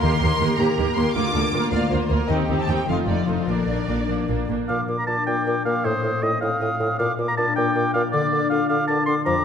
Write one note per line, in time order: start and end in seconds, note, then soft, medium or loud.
0.00 0.10 D#2 medium
0.00 0.10 D#2 soft
0.00 1.17 D#3 soft
0.00 0.20 A#3 soft
0.00 0.19 A#3 soft
0.00 0.19 G4 soft
0.00 0.77 A#4 soft
0.00 1.12 A#4 medium
0.00 0.57 C6 medium
0.20 0.28 D#2 soft
0.20 0.29 D#2 soft
0.20 0.38 A#3 soft
0.20 0.58 A#3 soft
0.20 0.38 G4 soft
0.39 0.48 D#2 soft
0.39 0.57 A#3 soft
0.39 0.57 G4 soft
0.39 1.17 G4 soft
0.58 0.66 D#2 medium
0.58 0.67 D#2 soft
0.58 0.75 A#3 soft
0.58 0.96 A#3 soft
0.58 0.75 G4 soft
0.58 0.96 A#5 medium
0.76 0.85 D#2 soft
0.76 0.86 D#2 soft
0.76 0.95 A#3 soft
0.76 0.95 G4 soft
0.76 1.90 A#4 soft
0.96 1.03 D#2 soft
0.96 1.04 D#2 soft
0.96 1.14 A#3 soft
0.96 1.33 A#3 soft
0.96 1.15 G4 soft
0.96 1.15 C6 medium
1.15 1.23 D2 soft
1.15 2.31 D3 soft
1.15 1.33 A#3 soft
1.15 1.33 F4 soft
1.15 1.34 F4 medium
1.15 1.70 D6 medium
1.34 1.42 D2 soft
1.34 1.52 A#3 soft
1.34 1.71 A#3 soft
1.34 1.51 F4 soft
1.34 1.54 A4 soft
1.53 1.60 D2 soft
1.53 1.61 D2 soft
1.53 1.71 A#3 soft
1.53 1.71 F4 soft
1.53 2.31 F4 soft
1.53 1.72 A#4 soft
1.71 1.80 D2 soft
1.71 1.89 A#3 soft
1.71 2.09 A#3 soft
1.71 1.89 F4 soft
1.71 1.91 D5 soft
1.71 1.90 F5 medium
1.91 1.99 D2 soft
1.91 2.08 A#3 soft
1.91 2.08 F4 soft
1.91 2.31 A#4 soft
1.91 2.10 C5 soft
2.09 2.17 D2 soft
2.09 2.18 D2 soft
2.09 2.29 A#3 soft
2.09 2.31 A#3 soft
2.09 2.29 F4 soft
2.09 2.29 A#4 soft
2.28 2.37 D#2 soft
2.28 2.89 D#3 soft
2.28 2.48 C4 soft
2.28 2.48 D#4 soft
2.28 2.88 G4 medium
2.28 2.36 D#5 medium
2.48 2.56 D#2 soft
2.48 2.67 C4 soft
2.48 2.68 D#4 soft
2.60 2.69 A5 medium
2.68 2.76 D#2 soft
2.68 2.87 C4 soft
2.68 3.07 D#4 soft
2.68 2.87 D#4 soft
2.68 2.90 G4 soft
2.68 2.88 G5 soft
2.88 2.96 F1 soft
2.88 2.96 F2 soft
2.88 6.78 F3 soft
2.88 3.07 A3 soft
2.88 3.07 D#4 soft
2.88 3.47 F4 soft
2.88 2.97 F5 soft
3.07 3.16 F1 soft
3.07 3.15 F2 soft
3.07 3.27 A3 soft
3.07 3.27 D#4 soft
3.07 3.27 D5 soft
3.27 3.36 F1 soft
3.27 3.35 F2 soft
3.27 3.48 A3 soft
3.27 3.48 D#4 soft
3.27 3.50 D#4 soft
3.27 3.50 A4 soft
3.27 3.49 C5 soft
3.48 3.56 A#1 soft
3.48 3.56 A#2 soft
3.48 4.68 A#2 soft
3.48 3.68 A#3 soft
3.48 3.68 D4 soft
3.48 4.09 A#4 soft
3.48 4.39 D5 soft
3.68 3.76 A#1 soft
3.68 3.76 A#2 soft
3.68 4.07 A#3 soft
3.68 3.87 A#3 soft
3.68 3.87 D4 soft
3.88 3.96 A#1 soft
3.88 3.96 A#2 soft
3.88 4.07 A#3 soft
3.88 5.06 D4 soft
3.88 4.06 D4 soft
4.08 4.16 A#1 soft
4.08 4.17 A#2 soft
4.08 4.27 A#3 soft
4.08 4.48 A#3 soft
4.08 4.27 D4 soft
4.28 4.37 A#1 soft
4.28 4.37 A#2 soft
4.28 4.48 A#3 soft
4.28 4.48 D4 soft
4.28 5.46 A#4 soft
4.49 4.57 A#1 soft
4.49 4.57 A#2 soft
4.49 4.68 A#3 soft
4.49 4.87 A#3 soft
4.49 4.68 D4 soft
4.68 5.87 A#2 soft
4.68 4.78 A#2 soft
4.68 4.81 F5 medium
4.68 4.87 D6 soft
4.88 4.97 A#2 soft
4.88 5.26 A#3 soft
4.88 5.07 D6 soft
4.99 5.06 A#5 medium
5.07 5.16 A#2 soft
5.07 5.87 D4 soft
5.07 5.26 A5 medium
5.07 5.27 D6 soft
5.27 5.36 A#2 soft
5.27 5.65 A#3 soft
5.27 5.65 G5 soft
5.27 5.46 D6 soft
5.47 5.55 A#2 soft
5.47 5.87 A#4 soft
5.47 5.65 D6 soft
5.65 5.74 A#2 soft
5.65 5.87 A#3 soft
5.65 5.87 F5 medium
5.65 5.85 D6 soft
5.84 5.93 A2 soft
5.84 7.01 A2 soft
5.84 6.24 C5 medium
5.84 6.04 D#6 soft
6.03 6.12 A2 soft
6.03 6.41 C4 soft
6.03 6.23 D#6 soft
6.23 6.31 A2 soft
6.23 7.01 D#4 soft
6.23 6.40 D#5 medium
6.23 6.42 D#6 soft
6.41 6.50 A2 soft
6.41 6.79 C4 soft
6.41 6.97 F5 soft
6.41 6.60 D#6 soft
6.60 6.69 A2 soft
6.60 7.74 F4 soft
6.60 6.79 D#6 soft
6.80 6.88 A2 soft
6.80 7.01 C4 soft
6.80 6.98 D#6 soft
6.99 7.08 A#2 soft
6.99 8.15 A#2 soft
6.99 7.12 F5 medium
6.99 7.18 D6 soft
7.19 7.27 A#2 soft
7.19 7.55 A#3 soft
7.19 7.37 D6 soft
7.28 7.32 A#5 medium
7.37 7.46 A#2 soft
7.37 8.31 D4 soft
7.37 7.55 A5 medium
7.37 7.56 D6 soft
7.56 7.66 A#2 soft
7.56 7.93 A#3 soft
7.56 7.93 G5 medium
7.56 7.75 D6 soft
7.75 7.84 A#2 soft
7.75 8.50 F4 soft
7.75 7.93 D6 soft
7.94 8.03 A#2 medium
7.94 9.43 A#3 soft
7.94 8.02 F5 medium
7.94 8.11 D6 soft
8.12 9.27 D3 soft
8.12 8.22 D3 soft
8.12 8.49 D5 medium
8.12 8.31 D6 medium
8.31 8.41 D3 soft
8.31 8.68 D4 soft
8.31 8.50 D6 soft
8.50 8.60 D3 soft
8.50 9.45 F4 soft
8.50 8.69 F5 medium
8.50 8.68 D6 soft
8.68 8.78 D3 medium
8.68 9.06 D4 soft
8.68 8.87 F5 medium
8.68 8.87 D6 soft
8.87 8.98 D3 soft
8.87 9.45 A#4 soft
8.87 9.06 A5 medium
8.87 9.06 D6 soft
9.06 9.16 D3 medium
9.06 9.45 D4 soft
9.06 9.15 C6 medium
9.06 9.25 D6 soft
9.26 9.45 F2 soft
9.26 9.34 F3 medium
9.26 9.45 A#5 medium
9.26 9.44 D6 medium